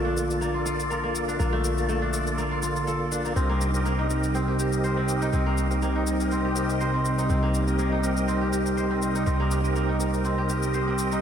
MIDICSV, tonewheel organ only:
0, 0, Header, 1, 2, 480
1, 0, Start_track
1, 0, Tempo, 491803
1, 1362, Time_signature, 4, 2, 24, 8
1, 10944, End_track
2, 0, Start_track
2, 0, Title_t, "Tonewheel organ"
2, 0, Program_c, 0, 16
2, 0, Note_on_c, 0, 58, 84
2, 0, Note_on_c, 0, 65, 75
2, 0, Note_on_c, 0, 69, 78
2, 0, Note_on_c, 0, 74, 90
2, 135, Note_off_c, 0, 58, 0
2, 135, Note_off_c, 0, 65, 0
2, 135, Note_off_c, 0, 69, 0
2, 135, Note_off_c, 0, 74, 0
2, 159, Note_on_c, 0, 58, 73
2, 159, Note_on_c, 0, 69, 65
2, 160, Note_on_c, 0, 65, 68
2, 160, Note_on_c, 0, 74, 83
2, 1334, Note_off_c, 0, 58, 0
2, 1334, Note_off_c, 0, 65, 0
2, 1334, Note_off_c, 0, 69, 0
2, 1334, Note_off_c, 0, 74, 0
2, 1360, Note_on_c, 0, 58, 69
2, 1360, Note_on_c, 0, 65, 64
2, 1360, Note_on_c, 0, 69, 66
2, 1360, Note_on_c, 0, 74, 77
2, 1699, Note_off_c, 0, 65, 0
2, 1700, Note_off_c, 0, 58, 0
2, 1700, Note_off_c, 0, 69, 0
2, 1700, Note_off_c, 0, 74, 0
2, 1727, Note_on_c, 0, 58, 83
2, 1727, Note_on_c, 0, 65, 75
2, 1727, Note_on_c, 0, 69, 75
2, 1727, Note_on_c, 0, 74, 97
2, 2053, Note_off_c, 0, 58, 0
2, 2053, Note_off_c, 0, 65, 0
2, 2053, Note_off_c, 0, 69, 0
2, 2053, Note_off_c, 0, 74, 0
2, 2079, Note_on_c, 0, 58, 70
2, 2079, Note_on_c, 0, 65, 67
2, 2079, Note_on_c, 0, 69, 67
2, 2079, Note_on_c, 0, 74, 78
2, 3254, Note_off_c, 0, 58, 0
2, 3254, Note_off_c, 0, 65, 0
2, 3254, Note_off_c, 0, 69, 0
2, 3254, Note_off_c, 0, 74, 0
2, 3278, Note_on_c, 0, 70, 62
2, 3279, Note_on_c, 0, 60, 67
2, 3279, Note_on_c, 0, 67, 65
2, 3279, Note_on_c, 0, 75, 76
2, 3619, Note_off_c, 0, 60, 0
2, 3619, Note_off_c, 0, 67, 0
2, 3619, Note_off_c, 0, 70, 0
2, 3619, Note_off_c, 0, 75, 0
2, 3649, Note_on_c, 0, 60, 81
2, 3650, Note_on_c, 0, 70, 78
2, 3651, Note_on_c, 0, 67, 77
2, 3651, Note_on_c, 0, 75, 90
2, 3974, Note_off_c, 0, 60, 0
2, 3974, Note_off_c, 0, 70, 0
2, 3975, Note_off_c, 0, 67, 0
2, 3975, Note_off_c, 0, 75, 0
2, 3998, Note_on_c, 0, 60, 76
2, 3998, Note_on_c, 0, 70, 64
2, 3999, Note_on_c, 0, 67, 67
2, 3999, Note_on_c, 0, 75, 81
2, 5173, Note_off_c, 0, 60, 0
2, 5174, Note_off_c, 0, 67, 0
2, 5174, Note_off_c, 0, 70, 0
2, 5174, Note_off_c, 0, 75, 0
2, 5197, Note_on_c, 0, 75, 78
2, 5198, Note_on_c, 0, 60, 70
2, 5198, Note_on_c, 0, 67, 64
2, 5198, Note_on_c, 0, 70, 63
2, 5538, Note_off_c, 0, 60, 0
2, 5538, Note_off_c, 0, 75, 0
2, 5539, Note_off_c, 0, 67, 0
2, 5539, Note_off_c, 0, 70, 0
2, 5568, Note_on_c, 0, 67, 79
2, 5569, Note_on_c, 0, 60, 87
2, 5569, Note_on_c, 0, 70, 79
2, 5569, Note_on_c, 0, 75, 94
2, 5893, Note_off_c, 0, 67, 0
2, 5894, Note_off_c, 0, 60, 0
2, 5894, Note_off_c, 0, 70, 0
2, 5894, Note_off_c, 0, 75, 0
2, 5920, Note_on_c, 0, 60, 72
2, 5920, Note_on_c, 0, 75, 83
2, 5921, Note_on_c, 0, 67, 68
2, 5921, Note_on_c, 0, 70, 67
2, 7094, Note_off_c, 0, 60, 0
2, 7094, Note_off_c, 0, 75, 0
2, 7095, Note_off_c, 0, 67, 0
2, 7095, Note_off_c, 0, 70, 0
2, 7118, Note_on_c, 0, 67, 63
2, 7118, Note_on_c, 0, 70, 63
2, 7118, Note_on_c, 0, 75, 78
2, 7119, Note_on_c, 0, 60, 67
2, 7459, Note_off_c, 0, 60, 0
2, 7459, Note_off_c, 0, 67, 0
2, 7459, Note_off_c, 0, 70, 0
2, 7459, Note_off_c, 0, 75, 0
2, 7487, Note_on_c, 0, 60, 88
2, 7488, Note_on_c, 0, 67, 76
2, 7488, Note_on_c, 0, 70, 75
2, 7488, Note_on_c, 0, 75, 94
2, 7813, Note_off_c, 0, 60, 0
2, 7813, Note_off_c, 0, 67, 0
2, 7813, Note_off_c, 0, 70, 0
2, 7813, Note_off_c, 0, 75, 0
2, 7837, Note_on_c, 0, 67, 67
2, 7838, Note_on_c, 0, 70, 71
2, 7838, Note_on_c, 0, 75, 84
2, 7839, Note_on_c, 0, 60, 72
2, 9013, Note_off_c, 0, 67, 0
2, 9013, Note_off_c, 0, 70, 0
2, 9013, Note_off_c, 0, 75, 0
2, 9014, Note_off_c, 0, 60, 0
2, 9039, Note_on_c, 0, 70, 68
2, 9040, Note_on_c, 0, 60, 69
2, 9040, Note_on_c, 0, 67, 65
2, 9040, Note_on_c, 0, 75, 77
2, 9379, Note_off_c, 0, 60, 0
2, 9379, Note_off_c, 0, 67, 0
2, 9379, Note_off_c, 0, 70, 0
2, 9379, Note_off_c, 0, 75, 0
2, 9407, Note_on_c, 0, 70, 76
2, 9409, Note_on_c, 0, 60, 88
2, 9409, Note_on_c, 0, 67, 76
2, 9409, Note_on_c, 0, 75, 100
2, 9733, Note_off_c, 0, 70, 0
2, 9734, Note_off_c, 0, 60, 0
2, 9734, Note_off_c, 0, 67, 0
2, 9734, Note_off_c, 0, 75, 0
2, 9759, Note_on_c, 0, 60, 72
2, 9759, Note_on_c, 0, 67, 70
2, 9759, Note_on_c, 0, 70, 68
2, 9759, Note_on_c, 0, 75, 85
2, 10934, Note_off_c, 0, 60, 0
2, 10934, Note_off_c, 0, 67, 0
2, 10934, Note_off_c, 0, 70, 0
2, 10934, Note_off_c, 0, 75, 0
2, 10944, End_track
0, 0, End_of_file